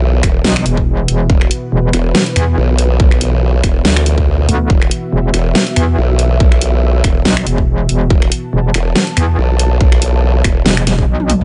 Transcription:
0.00 0.22 B1 loud
0.00 11.44 B2 medium
0.00 11.44 E3 medium
0.00 11.44 B3 medium
0.00 11.44 F#4 medium
0.00 1.29 E5 medium
0.23 0.43 E1 medium
0.23 finger snap medium
0.23 kick loud
0.23 closed hi-hat medium
0.44 0.64 B1 medium
0.44 snare loud
0.56 finger snap medium
0.56 closed hi-hat soft
0.66 1.07 E1 medium
0.66 closed hi-hat medium
0.77 kick medium
1.08 1.28 E1 medium
1.08 closed hi-hat medium
1.30 1.49 E1 loud
1.30 4.69 B4 medium
1.30 kick loud
1.41 finger snap medium
1.51 closed hi-hat medium
1.72 1.92 E1 loud
1.93 2.13 E1 loud
1.93 finger snap medium
1.93 closed hi-hat medium
2.15 snare loud
2.26 closed hi-hat soft
2.36 2.56 E2 loud
2.36 finger snap medium
2.36 closed hi-hat medium
2.57 2.98 B1 loud
2.79 closed hi-hat medium
3.00 3.62 B1 loud
3.00 kick loud
3.11 finger snap soft
3.21 closed hi-hat medium
3.64 3.83 E1 loud
3.64 finger snap medium
3.64 kick loud
3.64 closed hi-hat medium
3.85 4.47 D2 loud
3.85 snare loud
3.96 finger snap medium
3.96 closed hi-hat soft
4.06 closed hi-hat medium
4.18 kick medium
4.49 4.68 D2 loud
4.49 closed hi-hat medium
4.70 4.90 E1 loud
4.70 8.09 E5 medium
4.70 kick loud
4.82 finger snap medium
4.91 closed hi-hat medium
5.12 5.32 E1 loud
5.34 5.54 E1 loud
5.34 finger snap medium
5.34 closed hi-hat medium
5.55 snare loud
5.67 closed hi-hat soft
5.76 5.96 E2 loud
5.76 finger snap medium
5.76 closed hi-hat medium
5.98 6.39 B1 medium
6.19 closed hi-hat medium
6.40 7.03 B1 loud
6.40 kick loud
6.52 finger snap medium
6.61 closed hi-hat medium
7.04 7.24 E1 loud
7.04 finger snap medium
7.04 kick medium
7.04 closed hi-hat medium
7.25 7.45 B1 loud
7.25 snare loud
7.37 finger snap medium
7.37 closed hi-hat soft
7.47 7.88 E1 loud
7.47 closed hi-hat medium
7.58 kick medium
7.89 8.09 E1 loud
7.89 closed hi-hat medium
8.10 8.30 E1 loud
8.10 11.44 A5 medium
8.10 kick loud
8.22 finger snap medium
8.32 closed hi-hat medium
8.53 8.73 E1 loud
8.74 8.94 E1 loud
8.74 finger snap medium
8.74 closed hi-hat medium
8.96 snare loud
9.07 closed hi-hat soft
9.17 9.37 E2 loud
9.17 finger snap medium
9.17 closed hi-hat medium
9.38 9.79 B1 loud
9.59 closed hi-hat medium
9.81 10.43 B1 loud
9.81 kick loud
9.92 finger snap medium
10.02 closed hi-hat medium
10.44 10.64 E1 loud
10.44 finger snap medium
10.44 kick loud
10.44 closed hi-hat medium
10.66 11.07 E1 loud
10.66 snare loud
10.77 finger snap medium
10.77 closed hi-hat soft
10.87 snare medium
10.87 closed hi-hat medium
10.99 kick medium
11.08 11.39 B1 loud
11.20 high tom medium
11.30 closed hi-hat medium
11.30 mid tom medium
11.41 11.44 B1 loud

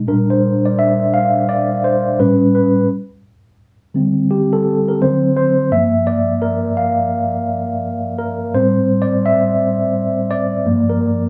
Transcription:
0.07 1.08 A#2 medium
0.07 1.09 G3 soft
0.07 1.09 D4 medium
0.07 0.30 A#4 medium
0.30 0.66 C5 medium
0.66 0.78 D5 medium
0.79 1.10 E5 medium
1.14 1.46 F5 medium
1.49 1.84 D5 loud
1.84 2.20 C5 medium
2.19 2.69 A2 medium
2.19 2.69 G3 soft
2.19 2.69 C#4 medium
2.19 2.54 B4 medium
2.55 2.70 B4 medium
3.94 4.96 D3 medium
3.94 4.96 G3 soft
3.94 4.97 C4 medium
4.31 4.53 G4 medium
4.53 4.89 A4 medium
4.88 5.01 A#4 medium
5.01 5.67 D3 medium
5.01 5.68 F#3 medium
5.01 5.68 C4 medium
5.01 5.35 C5 medium
5.37 5.72 C5 medium
5.71 6.21 G2 medium
5.71 6.22 F3 soft
5.71 6.22 A#3 medium
5.71 6.08 E5 medium
6.07 6.43 D5 loud
6.42 6.78 A#4 medium
6.77 7.10 F5 medium
8.19 8.54 A#4 medium
8.54 10.61 A2 medium
8.54 10.61 G3 medium
8.54 10.62 C4 medium
8.54 9.02 C5 medium
9.02 9.25 D5 loud
9.26 9.41 E5 loud
10.31 10.85 D5 loud
10.65 11.29 G2 medium
10.65 11.29 F3 medium
10.65 11.29 A#3 medium
10.90 11.22 A#4 medium

